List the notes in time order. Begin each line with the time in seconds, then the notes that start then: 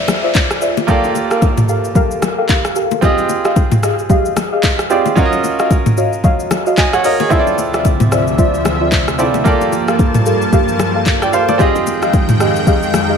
Already playing: C4 E4 F4 A4 C5 D5 E5, downlifter
0.08 cross-stick, high bongo, low bongo, low conga, shaker
0.24 F4 C5 D5 E5
0.35 kick, clap, high bongo, shaker
0.51 cross-stick, shaker
0.61 F4 C5 D5 E5, shaker
0.77 low bongo, shaker
0.87 A#3 F4 G4 A4 A#4 D5 F5, kick, low conga, shaker
1.04 high bongo, shaker
1.15 low bongo, shaker
1.31 G4 A4 A#4 F5, cross-stick, shaker
1.42 kick, high bongo, shaker
1.58 mid tom, low bongo, shaker
1.69 G4 A4 A#4 F5, shaker
1.84 shaker
1.95 G4 A4 A#4 F5, kick, low conga, shaker
2.11 shaker
2.22 cross-stick, high bongo, low bongo, low conga, shaker
2.38 G4 A4 A#4 F5
2.49 kick, clap, high bongo, shaker
2.65 cross-stick, shaker
2.76 G4 A4 A#4 F5, shaker
2.91 low bongo, shaker
3.01 C4 F4 G4 G#4 D#5 F5, kick, low conga, shaker
3.18 high bongo, shaker
3.29 low bongo, shaker
3.45 G4 G#4 D#5 F5, cross-stick, shaker
3.56 kick, high bongo, shaker
3.72 mid tom, low bongo, shaker
3.83 G4 G#4 D#5 F5, cross-stick, shaker
3.99 shaker
4.10 G4 G#4 D#5 F5, kick, low conga, shaker
4.25 shaker
4.37 cross-stick, high bongo, low bongo, low conga, shaker
4.52 G4 G#4 D#5 F5
4.63 kick, clap, high bongo, shaker
4.79 cross-stick, shaker
4.90 C4 F4 G4 G#4 D5 D#5 F5, shaker
5.06 low bongo, shaker
5.15 C#4 F4 F#4 A#4 C#5 D#5 F5, kick, low conga, shaker
5.26 D#5
5.33 high bongo, shaker
5.44 low bongo, shaker
5.59 F#4 C#5 D#5 F5, cross-stick, shaker
5.71 kick, high bongo, shaker
5.86 mid tom, low bongo, shaker
5.97 F#4 C#5 D#5 F5, shaker
6.13 shaker
6.24 F#4 C#5 D#5 F5, kick, low conga, shaker
6.40 shaker
6.51 cross-stick, high bongo, low bongo, low conga, shaker
6.66 F#4 C#5 D#5 F5, shaker
6.78 D#5 G#5, kick, clap, high bongo, shaker
6.93 C#5 F#5, cross-stick, shaker
7.04 F#4 A#4 C#5 D#5 F5, open hi-hat, shaker
7.20 G#4 C#5, low bongo, shaker
7.29 D2 C3 F3 C4 E4 F4 A4 C5 C#5 D5 E5, kick, low conga, shaker
7.39 D5
7.47 high bongo, shaker
7.58 low bongo, shaker
7.74 F4 C5 D5 E5, cross-stick, shaker
7.85 kick, high bongo, shaker
8.00 mid tom, low bongo, shaker
8.12 F4 C5 D5 E5, cross-stick, shaker
8.27 shaker
8.38 F4 C5 D5 E5, kick, low conga, shaker
8.54 shaker
8.65 cross-stick, high bongo, low bongo, low conga, shaker
8.81 F4 C5 D5 E5
8.92 kick, clap, high bongo, shaker
9.08 cross-stick, shaker
9.18 C4 E4 F4 A4 C5 D5 E5, shaker
9.34 low bongo, shaker
9.44 G2 F3 A#3 F4 G4 A4 A#4 D5 F5 A5, kick, low conga, shaker
9.61 high bongo, shaker
9.72 low bongo, shaker
9.88 G4 A4 A#4 F5, cross-stick, shaker
9.99 kick, high bongo, shaker
10.14 mid tom, low bongo, shaker
10.26 G4 A4 A#4 F5, shaker
10.42 shaker
10.53 G4 A4 A#4 F5, kick, low conga, shaker
10.68 shaker
10.79 cross-stick, high bongo, low bongo, low conga, shaker
10.95 G4 A4 A#4 F5
11.06 kick, clap, high bongo, shaker
11.22 D5 G5, cross-stick, shaker
11.33 G4 A4 A#4 C5 F5, shaker
11.49 A4 D5, low bongo, shaker
11.58 F2 D#3 G#3 C4 F4 G4 G#4 D#5 F5 G5, kick, low conga, shaker
11.75 high bongo, shaker
11.87 low bongo, shaker
12.02 G4 G#4 D#5 F5, cross-stick, shaker
12.13 kick, high bongo, shaker
12.29 mid tom, low bongo, shaker
12.40 G4 G#4 D#5 F5, cross-stick, shaker
12.56 shaker
12.67 G4 G#4 D#5 F5, kick, low conga, shaker
12.83 shaker
12.94 cross-stick, high bongo, low bongo, low conga, shaker
13.09 G4 G#4 D#5 F5